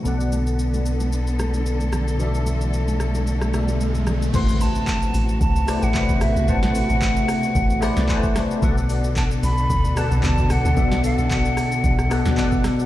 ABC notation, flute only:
X:1
M:4/4
L:1/16
Q:"Swing 16ths" 1/4=112
K:Ador
V:1 name="Flute"
z16 | z16 | c'2 a6 a3 f3 e2 | f12- f2 z2 |
z4 a2 b4 a2 a2 f2- | f2 f12 z2 |]